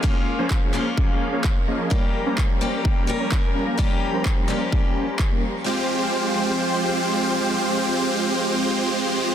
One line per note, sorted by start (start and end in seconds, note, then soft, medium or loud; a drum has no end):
0.00 0.17 F3 medium
0.00 0.71 G#3 medium
0.00 0.71 A#3 medium
0.00 0.17 A#3 medium
0.00 3.75 C#4 medium
0.00 0.17 C#4 medium
0.00 1.88 F4 medium
0.00 0.17 G#4 medium
0.00 5.62 A#4 medium
0.00 0.17 C#5 medium
0.00 1.87 F5 medium
0.00 kick loud
0.04 0.71 C#4 medium
0.04 0.72 F4 medium
0.39 0.71 F3 medium
0.39 0.71 A#3 medium
0.39 0.71 C#4 medium
0.39 0.71 G#4 medium
0.39 0.71 C5 medium
0.50 kick loud
0.50 clap loud
0.73 0.87 F3 medium
0.73 1.88 G#3 medium
0.73 1.88 A#3 medium
0.73 0.87 A#3 medium
0.73 0.87 C#4 medium
0.73 1.89 C#4 medium
0.73 1.89 F4 medium
0.73 0.87 G#4 medium
0.73 0.87 C5 medium
0.73 clap soft
0.97 1.30 F3 medium
0.97 1.30 A#3 medium
0.97 1.30 C#4 medium
0.97 1.30 G#4 medium
0.97 1.30 F5 loud
0.97 kick loud
1.33 1.53 F3 medium
1.33 1.53 A#3 medium
1.33 1.53 C#4 medium
1.33 1.53 G#4 medium
1.33 1.53 C#5 medium
1.44 kick loud
1.44 clap loud
1.68 1.88 F3 medium
1.68 1.88 A#3 medium
1.68 1.88 C#4 medium
1.68 1.88 G#4 medium
1.68 1.88 D#5 medium
1.90 5.62 F3 medium
1.90 2.58 G3 medium
1.90 2.04 G3 medium
1.90 2.58 A#3 medium
1.90 2.04 A#3 medium
1.90 2.04 C#4 medium
1.90 2.59 C#4 medium
1.90 5.62 G4 medium
1.90 2.59 G4 medium
1.90 2.04 A#4 medium
1.90 2.04 C#5 medium
1.90 5.62 A#5 medium
1.90 kick loud
2.26 2.59 G3 medium
2.26 2.59 A#3 medium
2.26 2.59 C#4 medium
2.26 2.59 A#4 medium
2.26 2.59 C5 medium
2.38 kick loud
2.38 clap loud
2.61 3.05 G3 medium
2.61 2.74 G3 medium
2.61 3.05 A#3 medium
2.61 2.74 A#3 medium
2.61 2.74 C#4 medium
2.61 3.06 C#4 medium
2.61 3.06 G4 medium
2.61 2.74 A#4 medium
2.61 2.74 C5 medium
2.85 3.17 G3 medium
2.85 3.17 A#3 medium
2.85 3.17 C#4 medium
2.85 3.17 A#4 medium
2.85 3.17 G5 loud
2.85 kick loud
3.07 3.75 G3 medium
3.07 3.76 A#3 medium
3.07 3.76 C#4 medium
3.07 3.76 A#4 medium
3.20 3.41 G3 medium
3.20 3.41 A#3 medium
3.20 3.41 C#4 medium
3.20 3.41 A#4 medium
3.20 3.41 C#5 medium
3.32 kick loud
3.32 clap loud
3.55 3.76 G3 medium
3.55 3.76 A#3 medium
3.55 3.76 C#4 medium
3.55 3.76 A#4 medium
3.55 3.76 F5 medium
3.77 4.46 G3 medium
3.77 3.92 G3 medium
3.77 4.46 A#3 medium
3.77 3.92 A#3 medium
3.77 3.92 C#4 medium
3.77 4.46 C#4 medium
3.77 4.47 G4 medium
3.77 3.92 A#4 medium
3.77 5.64 C5 medium
3.77 3.92 C#5 medium
3.77 kick loud
4.14 4.46 G3 medium
4.14 4.46 A#3 medium
4.14 4.46 C#4 medium
4.14 4.46 A#4 medium
4.14 4.46 C5 medium
4.25 kick loud
4.25 clap loud
4.48 5.63 G3 medium
4.48 4.62 G3 medium
4.48 5.63 A#3 medium
4.48 4.62 A#3 medium
4.48 4.62 C#4 medium
4.48 5.64 C#4 medium
4.48 5.64 G4 medium
4.48 4.62 A#4 medium
4.48 4.62 C5 medium
4.48 clap soft
4.72 5.05 G3 medium
4.72 5.05 A#3 medium
4.72 5.05 C#4 medium
4.72 5.05 A#4 medium
4.72 5.05 G5 loud
4.72 kick loud
5.19 kick loud
5.19 clap loud
5.31 5.44 G3 medium
5.31 5.44 A#3 medium
5.31 5.44 C#4 medium
5.31 5.44 A#4 medium
5.31 5.44 F5 loud
5.64 9.32 F3 medium
5.64 9.30 G#3 medium
5.64 9.32 G#3 medium
5.64 9.31 C4 medium
5.64 9.32 C4 medium
5.64 9.32 F4 medium
5.64 9.33 F4 medium
5.64 9.32 G4 medium
5.64 9.34 G4 medium
5.64 9.32 C5 medium
5.64 9.32 G5 medium